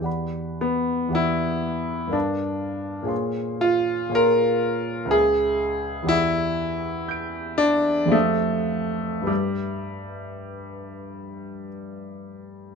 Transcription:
0.00 E2 G4 D5 F#5
0.06 B5
0.61 B3
1.09 E2 G4 D5
1.13 E4 F#5 B5
2.07 G2 A#4 D5
2.11 D4 F5 A5
3.03 A#2 G#4 C#5
3.07 F5 C6
3.61 F4
4.09 A#2 G#4 C#5
4.14 A#4 F5 C6
5.05 C#2 B4
5.10 G#4 E5 D#6
6.03 E2 G4 D5
6.07 E4 F#5 E6
7.08 G6 D7
7.58 D4
8.06 F2 G4 C5
8.10 A3 F5 D#6
9.21 G2 G4 B4
9.25 G3 E5 D6

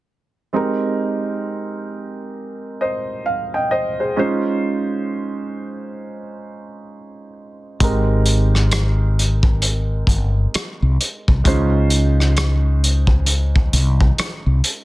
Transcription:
0.53 G#3 C4 D#4 G4 A#4
2.81 C5 D#5
3.26 F5
3.54 D#5 G5
3.71 C5 D#5
4.00 G#4 C5
4.16 G#3 C#4 D#4 F4 C5
7.80 G#1 G#3 C4 D#4 G4 A#4, kick, closed hi-hat
8.26 closed hi-hat
8.55 cross-stick
8.71 cross-stick, closed hi-hat
9.19 closed hi-hat
9.43 kick
9.62 closed hi-hat
10.07 G1, kick, closed hi-hat
10.54 muted fretless electric bass stroke, cross-stick, closed hi-hat
10.82 C2
11.01 closed hi-hat
11.28 C2, kick
11.44 C#2 G#3 C#4 D#4 F4 C5, kick, closed hi-hat
11.90 closed hi-hat
12.20 cross-stick
12.37 cross-stick, closed hi-hat
12.84 closed hi-hat
13.07 kick
13.26 closed hi-hat
13.56 kick
13.73 C2, closed hi-hat
14.01 kick
14.18 muted fretless electric bass stroke, cross-stick, closed hi-hat
14.46 C2
14.64 closed hi-hat

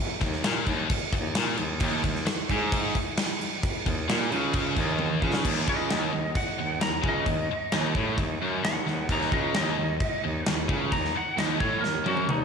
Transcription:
0.21 D#2, kick, snare, crash
0.33 snare
0.44 A#2, snare, crash
0.66 D#2, kick, crash
0.90 D#2, muted distorted electric guitar stroke, kick, crash
1.12 D#2, kick, crash
1.35 A#2, snare, crash
1.57 D#2, crash
1.80 D#2, kick, crash
2.04 D#2, kick, crash
2.15 snare
2.26 D#2, muted distorted electric guitar stroke, muted overdriven electric guitar stroke, snare, crash
2.49 G#2, kick, crash
2.72 kick, crash
2.95 kick, crash
3.17 snare, crash
3.41 crash
3.63 kick, crash
3.86 D#2, kick, crash
4.08 A#2, snare, crash
4.32 C#2 C#3, crash
4.53 kick, crash
4.76 D#2, kick, crash
4.99 high tom
5.22 C#2 C#3, kick
5.34 snare
5.45 D#2, kick, crash
5.57 snare
5.67 C#2 C#3 D#5, kick
5.89 D#2, snare, crash
6.12 D#2
6.35 F#5, kick, crash
6.59 D#2
6.81 D#2 A#5, snare, crash
7.02 C#2 C#3, kick
7.08 D#5
7.26 D#2, kick, crash
7.50 D#2, muted overdriven electric guitar stroke, muted distorted electric guitar stroke
7.72 D#2, snare, crash
7.95 A2, kick
8.18 D#2, kick, crash
8.40 F#2
8.64 D#2 F#5, snare, crash
8.87 D#2, snare
9.09 D#2 A#5, kick, crash
9.21 snare
9.32 C#2 C#3 D#5, kick
9.54 D#2 D#5, snare, crash
9.78 D#2
10.00 kick, crash
10.24 D#2
10.46 D#2, snare, crash
10.69 C#2 C#3, kick
10.92 D#2 A#5, kick, crash
11.05 snare
11.15 D#2 F#5, muted overdriven electric guitar stroke, muted distorted electric guitar stroke
11.38 D#2 D#5, snare, crash
11.60 A2 C#5, kick
11.81 D#2 A#4, snare
12.04 F#2 F#4, high tom
12.17 high tom
12.27 D#2 D#4, mid tom

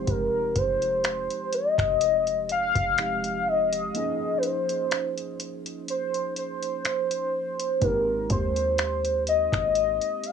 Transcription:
Already playing: F3 G#3 C4 D#4 G4 C5
0.07 F1 A#4, kick, closed hi-hat
0.55 F1 C5, kick, closed hi-hat
0.82 closed hi-hat
1.04 finger snap, closed hi-hat
1.30 closed hi-hat
1.52 D#5, closed hi-hat
1.78 F1, finger snap, kick, closed hi-hat
2.01 closed hi-hat
2.27 closed hi-hat
2.49 F5, closed hi-hat
2.75 F1, kick, closed hi-hat
2.98 F3 G#3 C4 D#4 G4, finger snap, closed hi-hat
3.24 closed hi-hat
3.48 D#5
3.73 closed hi-hat
3.94 F3 A#3 C#4 D#4 G#4, closed hi-hat
4.38 B4
4.43 C5, closed hi-hat
4.69 closed hi-hat
4.91 finger snap, closed hi-hat
5.18 closed hi-hat
5.40 closed hi-hat
5.66 closed hi-hat
5.88 C5, closed hi-hat
6.14 closed hi-hat
6.37 C5, closed hi-hat
6.63 closed hi-hat
6.85 finger snap, closed hi-hat
7.11 closed hi-hat
7.60 closed hi-hat
7.81 G#1 G#3 A#3 B3 D#4 G4 A#4, kick, closed hi-hat
7.89 C4
8.30 D#2 C5, kick, closed hi-hat
8.56 closed hi-hat
8.78 finger snap, closed hi-hat
9.05 closed hi-hat
9.27 D#5, closed hi-hat
9.52 G#1, finger snap, kick, closed hi-hat
9.75 closed hi-hat
10.01 closed hi-hat
10.23 F5, closed hi-hat

